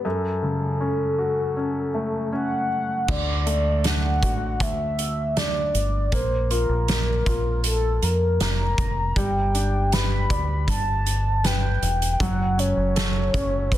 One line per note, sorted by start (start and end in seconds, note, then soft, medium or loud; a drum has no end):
0.05 3.05 F#2 medium
0.05 2.29 A4 medium
0.42 1.91 C#3 soft
0.81 1.55 C#4 soft
1.18 2.67 F#4 soft
1.57 2.31 C#4 soft
1.94 3.05 A3 soft
2.33 3.06 C#4 soft
2.33 3.12 F#5 medium
3.08 4.23 D2 medium
3.08 6.08 D3 medium
3.08 3.88 D5 medium
3.08 kick medium
3.08 crash medium
3.46 4.94 A3 soft
3.46 closed hi-hat medium
3.84 5.32 D4 soft
3.84 4.63 F#5 medium
3.84 snare medium
3.84 closed hi-hat medium
4.22 4.60 A1 medium
4.22 5.70 F#4 soft
4.22 kick medium
4.22 closed hi-hat medium
4.60 5.70 D2 medium
4.60 5.40 E5 medium
4.60 kick medium
4.60 closed hi-hat medium
4.99 closed hi-hat medium
5.37 6.10 D4 soft
5.37 6.15 D5 medium
5.37 snare medium
5.37 closed hi-hat medium
5.74 6.10 G1 medium
5.74 closed hi-hat medium
6.12 6.65 A#1 medium
6.12 6.87 A#3 medium
6.12 6.50 C5 medium
6.12 kick medium
6.12 closed hi-hat medium
6.51 7.25 F4 soft
6.51 7.61 A#4 medium
6.51 closed hi-hat medium
6.69 7.22 A#1 medium
6.88 8.36 A#3 soft
6.88 snare medium
6.88 closed hi-hat medium
7.26 7.98 A#1 medium
7.26 8.74 F4 soft
7.26 kick medium
7.26 closed hi-hat medium
7.64 8.05 A4 medium
7.64 closed hi-hat medium
8.02 8.38 F2 medium
8.02 8.42 A#4 medium
8.02 closed hi-hat medium
8.40 8.75 F1 medium
8.40 9.14 A#3 soft
8.40 9.19 A#5 medium
8.40 snare medium
8.40 closed hi-hat medium
8.78 9.13 F1 medium
8.78 kick medium
8.78 closed hi-hat medium
9.16 10.26 G1 medium
9.16 12.16 G3 medium
9.16 9.94 G5 loud
9.16 kick medium
9.16 closed hi-hat medium
9.54 11.02 D4 soft
9.54 closed hi-hat medium
9.92 11.40 B4 soft
9.92 10.68 B5 loud
9.92 snare loud
9.92 closed hi-hat medium
10.30 10.65 D2 medium
10.30 11.78 D5 soft
10.30 kick medium
10.30 closed hi-hat medium
10.68 11.78 G1 medium
10.68 11.47 A5 loud
10.68 kick medium
10.68 closed hi-hat medium
11.06 closed hi-hat medium
11.44 12.18 B4 medium
11.44 12.13 G5 loud
11.44 snare medium
11.44 closed hi-hat medium
11.82 12.17 E1 medium
11.82 closed hi-hat medium
12.02 closed hi-hat soft
12.13 12.22 G5 medium
12.20 12.73 F#1 medium
12.20 13.78 F#3 medium
12.20 12.61 F#5 medium
12.20 kick medium
12.20 closed hi-hat medium
12.58 13.32 C#4 soft
12.58 13.75 C#5 medium
12.58 closed hi-hat medium
12.77 13.30 F#1 medium
12.96 13.78 A4 soft
12.96 snare loud
12.96 closed hi-hat medium
13.33 13.78 F#1 medium
13.33 13.78 C#4 soft
13.33 kick medium
13.33 closed hi-hat medium
13.72 13.78 B4 medium
13.72 kick medium
13.72 closed hi-hat medium